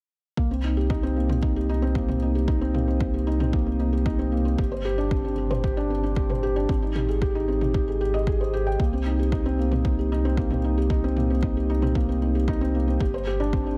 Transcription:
0.37 C2 A#3, kick
0.51 C4
0.64 D#4
0.77 G4
0.90 D#4, kick
1.03 C4
1.16 A#3
1.29 C4, mid tom
1.43 D#4, kick
1.56 G4
1.69 D#4
1.82 C4
1.95 A#3, kick
2.09 C4, mid tom
2.22 D#4
2.35 G4
2.48 D#4, kick
2.61 C4
2.74 A#3, mid tom
2.88 C4
3.01 D#4, kick
3.14 G4
3.27 D#4
3.40 C4, mid tom
3.53 A#3, kick
3.66 C4
3.79 D#4
3.93 G4
4.06 D#4, kick
4.19 C4
4.32 A#3
4.45 C4
4.58 G1 G4, kick
4.72 C5
4.85 G4
4.98 D4
5.11 C4, kick
5.25 D4
5.38 G4
5.51 C5, mid tom
5.64 G4, kick
5.77 D4
5.90 C4
6.03 D4
6.16 G4, kick
6.30 C5, mid tom
6.43 G4
6.56 D4
6.69 G#1 C4, kick
6.83 D#4
6.95 G4, mid tom
7.09 G#4
7.22 G4, kick
7.35 D#4
7.48 C4
7.61 D#4, mid tom
7.74 G4, kick
7.88 G#4
8.01 G4
8.14 D#5
8.27 G#4, kick
8.41 C5
8.54 G4
8.67 G5
8.80 C2 A#3, kick
8.93 C4
9.06 D#4
9.19 G4
9.32 D#4, kick
9.46 C4
9.59 A#3
9.72 C4, mid tom
9.85 D#4, kick
9.99 G4
10.12 D#4
10.25 C4
10.37 A#3, kick
10.51 C4, mid tom
10.64 D#4
10.78 G4
10.90 D#4, kick
11.04 C4
11.17 A#3, mid tom
11.30 C4
11.43 D#4, kick
11.57 G4
11.70 D#4
11.82 C4, mid tom
11.95 A#3, kick
12.09 C4
12.22 D#4
12.35 G4
12.48 D#4, kick
12.61 C4
12.75 A#3
12.88 C4
13.00 G1 G4, kick
13.14 C5
13.27 G4
13.40 D4
13.53 C4, kick
13.66 D4

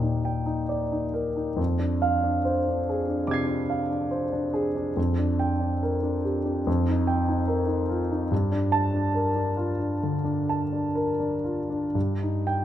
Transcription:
Already playing: D#2 A#2 D#4 A#4 D5 G5
0.02 D#4
0.25 G5
0.46 D#4
0.69 D5
0.92 D#4
1.14 A#4
1.36 D#4
1.56 F2
1.79 D4
2.02 F5
2.23 D4
2.45 C5
2.68 D4
2.89 G#4
3.08 D4
3.27 C3 D6
3.31 G#6 C7
3.47 D4
3.70 F5
3.90 D4
4.11 C5
4.32 D4
4.54 G#4
4.76 D4
4.97 F2
5.18 D4
5.39 G5
5.60 D4
5.83 A#4
6.02 D4
6.25 G4
6.45 D4
6.67 F2
6.89 D#4
7.07 G5
7.28 D#4
7.48 A#4
7.67 D#4
7.89 F4
8.11 D#4
8.31 G2
8.52 D4
8.72 A5
8.93 D4
9.15 A#4
9.35 D4
9.57 F4
9.79 D4
10.03 D3
10.24 D4
10.49 A5
10.72 D4
10.95 A#4
11.20 D4
11.44 F4
11.70 D4
11.95 G2
12.23 D#4
12.47 G5

